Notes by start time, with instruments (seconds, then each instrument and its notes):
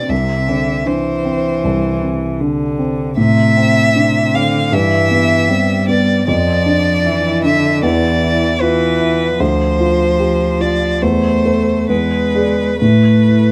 Already playing: grand piano E3 C4 D4, violin D5
0.09 grand piano C2, cello C3, violin E5
0.48 cello D3, grand piano C4
0.86 cello E3, grand piano D4, violin C5
1.25 grand piano C4
1.64 grand piano C2
2.03 grand piano C3
2.41 cello D3, grand piano D3
2.79 grand piano C4
3.17 grand piano A2, cello C3, violin E5
3.57 grand piano C4
3.95 cello C3, grand piano D4
4.34 cello D3, grand piano C4, violin F5
4.72 grand piano G2, cello E3, violin E5
5.11 grand piano B3
5.49 cello G3, grand piano C4
5.88 grand piano B3, violin D5
6.28 grand piano F2, cello F3, violin D5
6.66 grand piano D4
7.05 cello E3, grand piano E4
7.43 cello D3, grand piano D4, violin E5
7.82 grand piano E2, cello E3, violin D5
8.22 grand piano E4
8.61 cello E3, grand piano F4, violin B4
9.00 grand piano E4
9.38 grand piano D2, cello F3, violin C5
9.80 grand piano F4
10.19 grand piano G4
10.61 grand piano F4, violin D5
11.02 grand piano E2, cello A3, violin C5
11.45 grand piano A4 C5
11.89 grand piano E2, cello G#3, violin B4
12.35 grand piano G#4 D5
12.81 grand piano A2, cello A3, violin B4
13.28 grand piano E4